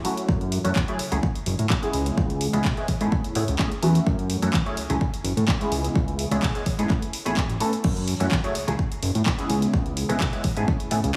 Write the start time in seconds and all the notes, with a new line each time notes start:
0.04 F#3 A3 C#4 E4 F#4, open hi-hat, tambourine
0.17 closed hi-hat, tambourine
0.28 F#2, kick, tambourine
0.41 closed hi-hat, tambourine
0.52 open hi-hat, tambourine
0.64 F#2 F#3 A3 C#4 E4 F#4, closed hi-hat
0.76 E2, kick, clap
0.88 F#3 A3 C#4 E4 G#4, closed hi-hat
0.98 C#2, open hi-hat, tambourine
1.11 C#2 F#3 A3 C#4 E4 G#4, closed hi-hat
1.23 kick, tambourine
1.35 closed hi-hat, tambourine
1.46 F#1, open hi-hat, tambourine
1.59 A2, closed hi-hat, tambourine
1.70 kick, clap
1.82 G#3 B3 C#4 E4 G#4, closed hi-hat
1.93 C#2, open hi-hat, tambourine
2.06 closed hi-hat, tambourine
2.17 C#2, kick, tambourine
2.30 closed hi-hat, tambourine
2.40 open hi-hat, tambourine
2.53 C#2 G#3 B3 C#4 E4 G#4, closed hi-hat, tambourine
2.65 B1, kick, clap
2.77 G#3 B3 C#4 E4 G#4, closed hi-hat
2.88 G#2, kick, open hi-hat, tambourine
3.01 G#2 A3 B3 C#4 E4 G#4, closed hi-hat, tambourine
3.12 kick, tambourine
3.24 A2, closed hi-hat, tambourine
3.35 A2 A3 B3 C#4 E4 G#4, open hi-hat, tambourine
3.48 C#2, closed hi-hat, tambourine
3.59 A3 B3 C#4 E4 G#4, kick, clap
3.71 closed hi-hat, tambourine
3.82 E2 F#3 A3 C#4 E4 F#4, open hi-hat, tambourine
3.95 closed hi-hat, tambourine
4.07 F#2, kick, tambourine
4.19 closed hi-hat, tambourine
4.30 open hi-hat, tambourine
4.42 F#2 F#3 A3 C#4 E4 F#4, closed hi-hat, tambourine
4.54 E2, kick, clap
4.66 F#3 A3 C#4 E4 G#4, closed hi-hat
4.77 C#2, open hi-hat, tambourine
4.89 C#2 F#3 A3 C#4 E4 G#4, closed hi-hat, tambourine
5.00 kick, tambourine
5.13 closed hi-hat, tambourine
5.24 F#1, open hi-hat, tambourine
5.37 A2, closed hi-hat, tambourine
5.48 kick, clap
5.60 G#3 B3 C#4 E4 G#4, closed hi-hat, tambourine
5.71 C#2, open hi-hat, tambourine
5.83 closed hi-hat, tambourine
5.95 C#2, kick, tambourine
6.08 closed hi-hat, tambourine
6.19 open hi-hat, tambourine
6.31 C#2 G#3 B3 C#4 E4 G#4, closed hi-hat, tambourine
6.43 B1, kick, clap
6.55 G#3 B3 C#4 E4 G#4, closed hi-hat
6.66 G#2, kick, open hi-hat, tambourine
6.78 G#2 A3 B3 C#4 E4 G#4, closed hi-hat, tambourine
6.90 kick, clap, tambourine
7.02 closed hi-hat, tambourine
7.13 open hi-hat, tambourine
7.25 A1 A3 B3 C#4 E4 G#4, closed hi-hat, tambourine
7.37 A1, kick, clap
7.49 A1, closed hi-hat, tambourine
7.60 A3 B3 C#4 E4 A4, open hi-hat, tambourine
7.73 closed hi-hat, tambourine
7.84 F#2, kick, crash, tambourine
7.96 closed hi-hat, tambourine
8.08 open hi-hat, tambourine
8.20 F#2 F#3 A3 C#4 E4 F#4, closed hi-hat, tambourine
8.31 E2, kick, clap
8.44 F#3 A3 C#4 E4 G#4, closed hi-hat
8.55 C#2, open hi-hat, tambourine
8.67 C#2 F#3 A3 C#4 E4 G#4, closed hi-hat, tambourine
8.79 kick, tambourine
8.92 closed hi-hat, tambourine
9.02 F#1, open hi-hat, tambourine
9.15 A2, closed hi-hat, tambourine
9.26 kick, clap
9.38 G#3 B3 C#4 E4 G#4, closed hi-hat, tambourine
9.50 C#2, open hi-hat, tambourine
9.62 closed hi-hat, tambourine
9.74 C#2, kick, tambourine
9.86 closed hi-hat, tambourine
9.97 open hi-hat, tambourine
10.09 C#2 G#3 B3 C#4 E4 G#4, closed hi-hat, tambourine
10.20 B1, kick, clap
10.33 G#3 B3 C#4 E4 G#4, closed hi-hat, tambourine
10.44 G#2, kick, open hi-hat, tambourine
10.56 G#2 A3 B3 C#4 E4 G#4, closed hi-hat, tambourine
10.68 kick, tambourine
10.80 A2, closed hi-hat, tambourine
10.91 A2 A3 B3 C#4 E4 G#4, open hi-hat, tambourine
11.03 C#2, closed hi-hat, tambourine